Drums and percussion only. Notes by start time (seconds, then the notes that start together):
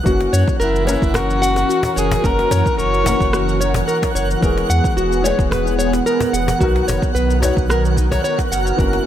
0.06 kick, shaker
0.21 cajon slap
0.34 shaker
0.48 kick, shaker
0.61 shaker
0.76 shaker
0.87 cajon slap, shaker
1.02 kick, shaker
1.14 cajon bass, cross-stick, shaker
1.30 shaker
1.43 shaker
1.56 cajon slap, shaker
1.70 shaker
1.83 cajon bass, shaker
1.98 shaker
2.11 cajon bass, shaker
2.24 kick, shaker
2.39 cajon slap
2.51 cajon bass, shaker
2.66 kick, shaker
2.79 shaker
2.94 shaker
3.06 cajon bass, cajon slap, shaker
3.20 kick, shaker
3.33 cross-stick, shaker
3.49 shaker
3.61 shaker
3.74 cajon bass, shaker
3.89 shaker
4.02 kick, cajon slap, shaker
4.16 shaker
4.31 shaker
4.43 kick, shaker
4.57 cajon slap
4.70 shaker
4.84 kick, shaker
4.98 shaker
5.12 shaker
5.25 cajon slap, shaker
5.39 kick, shaker
5.52 cajon bass, cross-stick, shaker
5.67 shaker
5.80 shaker
5.93 cajon slap, shaker
6.07 shaker
6.21 cajon bass, shaker
6.34 shaker
6.48 cajon bass, shaker
6.61 kick, shaker
6.76 cajon slap
6.88 cajon bass, shaker
7.02 kick, shaker
7.16 shaker
7.30 shaker
7.43 cajon bass, cajon slap, shaker
7.57 kick, shaker
7.70 cross-stick, shaker
7.85 shaker
7.97 kick, shaker
8.12 cajon bass, shaker
8.25 shaker
8.39 kick, cajon slap, shaker
8.52 shaker
8.67 shaker
8.79 kick, shaker
8.93 cajon slap